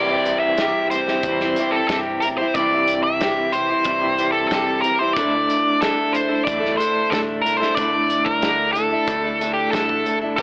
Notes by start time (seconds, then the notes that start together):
Already playing: C2 C3 E3 G3 C4 E4 D5
0.10 C4 E4 G4
0.26 closed hi-hat
0.40 E5
0.58 C3 G3 C4 E4 G4, snare, closed hi-hat
0.90 G3 C4 E4 G4 C5, closed hi-hat
1.08 C4 E4 G4, snare
1.23 E2 C3 E3 G3 C4 E4, kick, closed hi-hat
1.40 C4 E4 G4, snare
1.56 G3 C4 E4 G4, closed hi-hat
1.72 A4
1.88 G2 C3 G3 C4 E4 G4 A4, kick, snare, closed hi-hat
2.20 A1 G3 C4 E4 A#4, closed hi-hat
2.25 G4
2.37 E4 G4 C5
2.43 C4
2.54 C2 C3 E3 G3 C4 E4 D5, kick, closed hi-hat
2.58 C4 E4 G4
2.72 C4 E4 G4
2.87 closed hi-hat
3.03 E5
3.20 C3 G3 C4 E4 G4, snare, closed hi-hat
3.52 G3 C4 C5, closed hi-hat
3.56 E4 G4
3.70 C4 E4 G4
3.85 C2 C3 E3 G3 C4 E4, kick, closed hi-hat
4.01 C4 E4 G4
4.18 G3 C4 E4 G4, closed hi-hat
4.32 A4
4.48 C2 C3 G3 A4, kick, snare, closed hi-hat
4.52 C4 E4 G4
4.82 G3 C4 E4 G4 A#4, closed hi-hat
4.99 C4 E4 G4 C5
5.13 D2 D3 A3 D4 D5, kick, closed hi-hat
5.17 A3 D4 E4 A4
5.34 D4 E4 A4
5.50 closed hi-hat
5.81 D3 A3 D4 E4 A4, snare, closed hi-hat
6.13 A3 D4 E4 A4 C5, closed hi-hat
6.28 D4 E4 A4
6.45 E2 D3 A3 D4 D5, kick, closed hi-hat
6.49 E4
6.60 D4 E4 A4
6.65 snare
6.77 A3 D4 E4 A4 C5, closed hi-hat
7.10 A1 D3 A3 D4 E4 A4, kick, snare, closed hi-hat
7.41 C2 A3 D4 E4 A#4
7.46 A4, closed hi-hat
7.57 A4 C5
7.61 D4 E4, snare
7.75 D2 D3 A3 D4 E4 D5, kick, closed hi-hat
7.79 E4 A4
7.92 D4 E4 A4
8.10 closed hi-hat
8.25 A#4, kick
8.41 D3 D4 E4, snare, closed hi-hat
8.73 A3 D4 A4, closed hi-hat
8.77 E4 A4
8.90 D4 E4 A4
9.07 D2 D3 A3 D4 E4, kick, closed hi-hat
9.24 D4 E4 A4
9.41 A3 D4 E4 A4, closed hi-hat
9.54 G4
9.71 A1 D3 A3 D4 E4 A4, kick, snare, closed hi-hat
9.89 kick
10.05 G1 A3 D4 E4 A4, closed hi-hat
10.21 D4 E4 A4
10.36 G1 G2 D3 G3 B3 D4 B4, kick, closed hi-hat